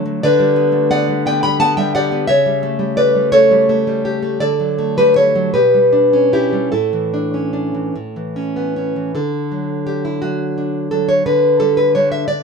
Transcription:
0.00 0.19 D3 medium
0.00 0.24 A3 medium
0.06 0.23 F#3 medium
0.23 2.26 D3 medium
0.23 0.89 B4 medium
0.23 0.89 D5 loud
0.40 1.07 G3 medium
0.56 0.89 B3 medium
0.72 1.76 A3 medium
0.91 1.25 B3 medium
0.91 1.24 D5 medium
0.91 1.24 F#5 loud
1.09 1.41 G3 medium
1.26 1.59 B3 medium
1.26 1.43 D5 medium
1.26 1.43 G5 loud
1.42 1.76 G3 medium
1.42 1.60 G5 medium
1.42 1.59 B5 loud
1.60 2.11 B3 medium
1.60 1.77 F#5 medium
1.60 1.77 A5 loud
1.77 2.28 G3 medium
1.77 1.94 E5 medium
1.77 1.94 G5 loud
1.95 2.30 G4 medium
1.95 2.28 D5 medium
1.95 2.27 F#5 loud
2.12 2.30 B3 medium
2.27 4.38 C#3 loud
2.27 2.94 C#5 medium
2.27 2.95 E5 loud
2.46 2.78 G3 medium
2.63 2.96 A3 medium
2.79 3.14 G3 medium
2.97 3.31 A3 medium
2.97 3.31 B4 medium
2.97 3.32 D5 loud
3.15 3.50 G3 medium
3.32 3.68 A3 medium
3.32 4.05 A4 medium
3.32 4.37 C#5 loud
3.51 3.86 G3 medium
3.69 4.21 A3 medium
3.87 4.42 G3 medium
4.05 4.41 G4 medium
4.23 4.42 A3 medium
4.40 5.50 D3 medium
4.40 4.94 A4 medium
4.40 4.95 D5 loud
4.60 5.34 F#3 medium
4.79 5.16 A3 medium
4.97 5.54 G3 medium
4.97 5.16 G4 medium
4.97 5.16 B4 loud
5.16 5.55 A3 medium
5.16 5.52 A4 medium
5.16 5.53 C#5 loud
5.35 5.55 F#3 medium
5.54 6.68 B2 medium
5.54 6.28 G4 medium
5.54 6.29 B4 medium
5.74 6.51 G3 medium
5.93 6.31 D4 medium
6.13 6.72 C#4 medium
6.32 6.72 D4 medium
6.32 6.70 E4 medium
6.32 6.71 G4 medium
6.53 6.72 G3 medium
6.72 7.91 A2 medium
6.72 8.72 E4 medium
6.72 8.56 A4 medium
6.93 7.73 E3 medium
7.14 7.52 D4 medium
7.34 7.95 C#4 medium
7.53 7.94 D4 medium
7.75 7.95 E3 medium
7.96 9.12 A2 medium
8.16 8.95 E3 medium
8.36 8.75 C#4 medium
8.56 9.15 B3 medium
8.76 9.14 C#4 medium
8.96 9.15 E3 medium
9.15 11.22 D3 medium
9.15 9.84 A4 medium
9.52 10.21 F#3 medium
9.87 10.56 D4 medium
9.87 10.04 G4 medium
10.05 10.22 E4 medium
10.22 10.91 F#3 medium
10.22 10.88 F#4 medium
10.58 11.26 D4 medium
10.91 11.26 F#3 medium
10.91 11.09 A4 medium
11.09 11.26 C#5 medium
11.26 12.25 D3 medium
11.26 11.59 B4 loud
11.60 11.94 G3 medium
11.60 11.77 A4 loud
11.77 11.94 B4 medium
11.95 12.25 G3 medium
11.95 12.25 D4 medium
11.95 12.11 C#5 medium
12.12 12.27 E5 medium
12.28 12.43 D3 medium
12.28 12.43 D5 loud

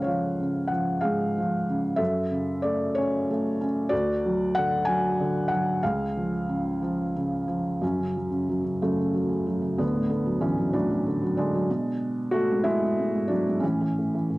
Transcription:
0.00 0.99 C#2 soft
0.00 0.38 C#3 soft
0.00 0.07 F3 soft
0.00 1.98 A4 soft
0.00 0.02 C#5 medium
0.00 0.71 C#5 medium
0.00 0.04 F5 soft
0.00 0.98 F5 soft
0.00 0.67 F#5 soft
0.07 0.70 F3 soft
0.40 1.65 C#3 soft
0.67 1.36 F3 soft
0.67 1.02 F#5 medium
1.01 1.98 G#2 medium
1.01 1.95 G#4 medium
1.01 2.02 F5 medium
1.38 1.99 F3 soft
1.69 2.00 C#3 soft
1.96 3.88 F#2 medium
1.96 2.91 A4 medium
1.96 2.58 E5 medium
2.31 3.56 C#3 soft
2.62 3.29 A3 soft
2.62 2.96 D5 medium
2.95 3.60 C#4 medium
2.95 3.64 C#5 medium
3.31 3.91 A3 soft
3.61 3.92 C#4 medium
3.89 5.78 D2 medium
3.89 4.82 F#4 medium
3.89 4.56 D5 medium
4.26 4.87 F#3 medium
4.55 5.18 D3 soft
4.55 4.87 F#5 medium
4.85 5.50 F#3 medium
4.85 5.51 G#5 medium
5.20 5.81 D3 soft
5.48 5.82 F#3 soft
5.48 5.82 F#5 medium
5.83 7.80 C#2 medium
5.83 7.12 G#4 medium
5.83 7.12 F5 medium
6.17 6.81 F3 soft
6.49 7.15 C#3 soft
6.82 7.46 F3 soft
7.16 7.81 C#3 soft
7.48 7.81 F3 soft
7.81 8.81 F#2 soft
7.81 8.16 F#3 soft
7.81 8.78 C#4 medium
8.00 8.29 C#3 soft
8.17 8.47 F#3 soft
8.30 8.63 C#3 soft
8.49 9.12 F#3 soft
8.64 8.81 C#3 soft
8.82 9.76 F#2 soft
8.82 8.97 C#3 soft
8.82 9.81 A3 medium
8.99 9.27 C#3 soft
9.14 9.45 F#3 soft
9.29 9.61 C#3 soft
9.47 9.77 F#3 soft
9.62 9.78 C#3 soft
9.78 11.65 D2 medium
9.78 10.08 D3 medium
9.78 10.08 B3 medium
9.93 10.72 A2 soft
10.10 10.39 D3 soft
10.10 10.43 B3 medium
10.26 10.56 F#3 soft
10.41 11.05 D3 soft
10.41 10.71 E3 medium
10.41 10.74 C#4 medium
10.58 10.73 F#3 soft
10.73 11.66 A2 medium
10.73 10.89 F#3 medium
10.73 11.36 D4 medium
10.90 11.21 F#3 soft
11.07 11.37 D3 soft
11.23 11.53 F#3 soft
11.37 11.69 D3 soft
11.37 12.29 G#3 medium
11.37 12.35 D4 medium
11.55 11.69 F#3 soft
11.70 13.59 B2 medium
12.31 12.63 A3 medium
12.31 12.65 F#4 medium
12.52 12.81 G#2 medium
12.64 13.26 G#3 medium
12.64 13.31 E4 medium
12.82 12.98 G#2 soft
12.99 13.13 G#2 soft
13.15 13.30 G#2 soft
13.28 13.46 G#2 soft
13.28 13.60 F#3 medium
13.28 13.62 D4 medium
13.47 13.63 G#2 soft
13.60 13.80 E3 medium
13.60 14.38 C#4 medium
13.65 13.97 A2 medium
13.81 14.13 E3 soft
13.99 14.28 A2 soft
14.14 14.38 E3 soft
14.30 14.38 A2 soft

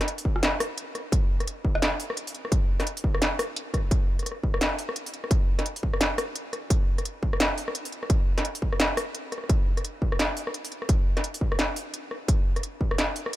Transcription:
0.01 cross-stick soft
0.01 snare soft
0.01 closed hi-hat soft
0.08 closed hi-hat medium
0.18 open hi-hat medium
0.25 kick medium
0.36 cross-stick medium
0.43 snare loud
0.43 closed hi-hat medium
0.60 cross-stick medium
0.60 open hi-hat medium
0.78 closed hi-hat medium
0.95 cross-stick soft
0.95 closed hi-hat soft
1.12 kick loud
1.12 closed hi-hat medium
1.40 cross-stick soft
1.40 closed hi-hat soft
1.47 closed hi-hat medium
1.65 kick medium
1.75 cross-stick medium
1.82 snare loud
1.82 closed hi-hat medium
2.00 open hi-hat medium
2.10 cross-stick medium
2.17 closed hi-hat medium
2.27 open hi-hat medium
2.35 closed hi-hat soft
2.45 cross-stick soft
2.52 kick loud
2.52 closed hi-hat medium
2.80 cross-stick soft
2.80 snare soft
2.80 open hi-hat soft
2.87 closed hi-hat medium
2.97 open hi-hat medium
3.04 kick medium
3.15 cross-stick medium
3.22 snare loud
3.22 closed hi-hat medium
3.39 cross-stick medium
3.39 open hi-hat medium
3.56 closed hi-hat medium
3.74 kick medium
3.74 cross-stick soft
3.74 closed hi-hat soft
3.91 kick loud
3.91 closed hi-hat medium
4.19 cross-stick soft
4.19 closed hi-hat soft
4.23 cross-stick soft
4.26 cross-stick soft
4.26 closed hi-hat medium
4.32 cross-stick soft
4.43 kick medium
4.54 cross-stick medium
4.61 snare loud
4.61 closed hi-hat medium
4.79 open hi-hat medium
4.89 cross-stick medium
4.96 closed hi-hat medium
5.06 open hi-hat medium
5.14 closed hi-hat soft
5.24 cross-stick soft
5.31 kick loud
5.31 closed hi-hat medium
5.59 cross-stick soft
5.59 snare soft
5.59 closed hi-hat soft
5.66 closed hi-hat medium
5.76 open hi-hat medium
5.83 kick medium
5.94 cross-stick medium
6.01 snare loud
6.01 closed hi-hat medium
6.18 cross-stick medium
6.18 open hi-hat medium
6.36 closed hi-hat medium
6.53 cross-stick soft
6.53 closed hi-hat soft
6.70 kick loud
6.70 closed hi-hat medium
6.98 cross-stick soft
6.98 closed hi-hat soft
7.05 closed hi-hat medium
7.23 kick medium
7.33 cross-stick medium
7.40 snare loud
7.40 closed hi-hat medium
7.58 open hi-hat medium
7.68 cross-stick medium
7.75 closed hi-hat medium
7.85 open hi-hat medium
7.92 closed hi-hat soft
8.03 cross-stick soft
8.10 kick loud
8.10 closed hi-hat medium
8.38 cross-stick soft
8.38 snare soft
8.38 closed hi-hat soft
8.45 closed hi-hat medium
8.55 open hi-hat medium
8.62 kick medium
8.72 cross-stick soft
8.80 snare loud
8.80 closed hi-hat medium
8.97 cross-stick medium
8.97 open hi-hat medium
9.15 closed hi-hat medium
9.32 cross-stick soft
9.32 closed hi-hat soft
9.38 cross-stick soft
9.44 cross-stick soft
9.49 kick loud
9.49 closed hi-hat medium
9.77 cross-stick soft
9.77 closed hi-hat soft
9.85 closed hi-hat medium
10.02 kick medium
10.12 cross-stick medium
10.19 snare loud
10.19 closed hi-hat medium
10.37 open hi-hat medium
10.47 cross-stick medium
10.54 closed hi-hat medium
10.65 open hi-hat medium
10.72 closed hi-hat soft
10.82 cross-stick soft
10.89 kick loud
10.89 closed hi-hat medium
11.17 cross-stick soft
11.17 snare soft
11.17 closed hi-hat soft
11.24 closed hi-hat medium
11.34 open hi-hat medium
11.41 kick medium
11.52 cross-stick medium
11.59 snare loud
11.59 closed hi-hat medium
11.76 open hi-hat medium
11.94 closed hi-hat medium
12.11 cross-stick soft
12.28 kick loud
12.28 closed hi-hat medium
12.56 cross-stick soft
12.56 closed hi-hat soft
12.63 closed hi-hat medium
12.81 kick medium
12.91 cross-stick medium
12.98 snare loud
12.98 closed hi-hat medium
13.16 open hi-hat medium
13.26 cross-stick medium

